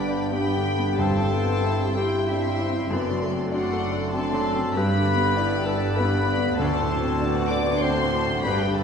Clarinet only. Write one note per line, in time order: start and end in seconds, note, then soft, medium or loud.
0.00 0.33 D4 medium
0.32 1.01 G4 medium
1.00 1.96 A4 medium
1.96 2.30 G4 medium
2.29 2.92 E4 medium
3.54 4.10 F#4 medium
4.14 4.78 A4 medium
4.76 5.68 B4 medium
5.67 5.98 A4 medium
5.96 6.58 B4 medium
6.59 7.52 A4 medium
7.51 7.84 D5 medium
7.82 8.45 C5 medium
8.45 8.64 B4 medium
8.63 8.79 G4 medium
8.77 8.84 A4 medium